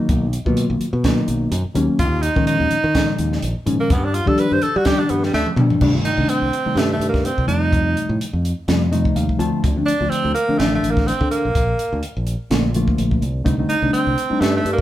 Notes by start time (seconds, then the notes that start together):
Already playing: B2 D#3 F#3 A#3 D#4
0.09 B1, kick, closed hi-hat
0.33 closed hi-hat
0.45 B2 D#3 F#3 A#3 F4, kick
0.57 closed hi-hat
0.70 B1
0.80 muted fingered electric bass stroke, closed hi-hat
0.93 B2
1.04 B2 D#3 F#3 A#3 D#4, kick, snare, closed hi-hat
1.28 B1, closed hi-hat
1.52 F#2, closed hi-hat
1.65 muted fingered electric bass stroke
1.74 D#2 B2 D#3 F#3 A#3 C#4, closed hi-hat
1.89 muted fingered electric bass stroke
1.99 D#2 F4, kick, closed hi-hat
2.22 D#4, closed hi-hat
2.35 A#2 D#3 F3 G#3 C#4, kick
2.47 D#4, closed hi-hat
2.60 D#2
2.71 muted fingered electric bass stroke, closed hi-hat
2.84 D#3
2.94 A#2 D#3 F3 G#3 D#4, kick, snare, closed hi-hat
3.18 D#2, closed hi-hat
3.32 snare
3.42 A#1, closed hi-hat
3.56 muted fingered electric bass stroke
3.65 G#2 A#2 D#3 F3 G#3 C#4, closed hi-hat
3.80 A#3, muted fingered electric bass stroke
3.90 G2 B3, kick, closed hi-hat
4.05 D4
4.14 F4, closed hi-hat
4.25 B2 D#3 F3 G3 D4 A4, kick
4.38 B4, closed hi-hat
4.51 G2 C5
4.62 A4, muted fingered electric bass stroke, closed hi-hat
4.76 G3 F#4
4.85 B2 D#3 F3 G3 D4 G4, kick, snare, closed hi-hat
5.00 D4
5.09 G2 B3, closed hi-hat
5.23 G3, snare
5.33 D2 A3, snare
5.46 muted fingered electric bass stroke, high tom
5.56 B2 D#3 F3 G3 D4, mid tom
5.70 muted fingered electric bass stroke, floor tom
5.81 C2 C3 D#3 G3 A3 D4, kick, crash
5.93 C3 D#3 G3 A3 F4
6.04 D#4, muted fingered electric bass stroke, closed hi-hat
6.17 C2 C3 D#3 G3 A3 D4
6.29 C4, closed hi-hat
6.42 C2
6.53 closed hi-hat
6.65 C3 D#3 G3 A3 D#4, muted fingered electric bass stroke
6.76 G2 A3, snare, closed hi-hat
6.93 A3
7.00 G2, closed hi-hat
7.09 A#3
7.14 kick, snare
7.25 C4, closed hi-hat
7.38 C2, kick
7.47 F2 C3 F3 G3 A3 D#4, closed hi-hat
7.73 kick, closed hi-hat
7.97 closed hi-hat
8.09 A2
8.21 closed hi-hat
8.33 F2
8.45 closed hi-hat
8.68 F2 C3 F3 G3 A3 F4, snare, closed hi-hat
8.91 C3 F3 G3 A3 D#4 D#5, closed hi-hat
9.05 kick
9.16 D#2 F5, closed hi-hat
9.29 kick
9.38 D2 D3 F3 A3 C4 F4 A5, closed hi-hat
9.64 D2, kick, closed hi-hat
9.76 D3 F3 A3 C4 D4
9.86 D4, muted fingered electric bass stroke, closed hi-hat
10.01 D2 D3 F3 A3 C4 F4
10.10 C4, muted fingered electric bass stroke, closed hi-hat
10.25 D2
10.35 A#3, closed hi-hat
10.48 D3 F3 A3 C4 D4, muted fingered electric bass stroke
10.59 A1 A3, snare, closed hi-hat
10.75 A3
10.83 A1, closed hi-hat
10.91 A#3
10.97 kick, snare
11.07 C4, closed hi-hat
11.21 D3, kick
11.31 A#3, closed hi-hat
11.45 C2
11.55 A#1, kick, closed hi-hat
11.79 closed hi-hat
11.93 D2
12.03 closed hi-hat
12.17 A#1
12.27 closed hi-hat
12.51 A#1 D3 F3 A3 A#3 F4, snare, closed hi-hat
12.74 D3 F3 A3 A#3 F4, closed hi-hat
12.88 kick
12.98 A#1, closed hi-hat
13.11 kick
13.22 C2, closed hi-hat
13.44 C2 D3 G3 A3 C4 D#4, kick, closed hi-hat
13.58 D3 G3 A3 C4 D#4
13.69 D#4, closed hi-hat
13.81 C2 D3 G3 A3 C4 D4
13.93 C4, muted fingered electric bass stroke, closed hi-hat
14.07 C2
14.18 closed hi-hat
14.30 G3 A3 C4 D4 D#4, muted fingered electric bass stroke
14.41 G2 A3, snare, closed hi-hat
14.57 A3
14.65 G2, closed hi-hat
14.73 A#3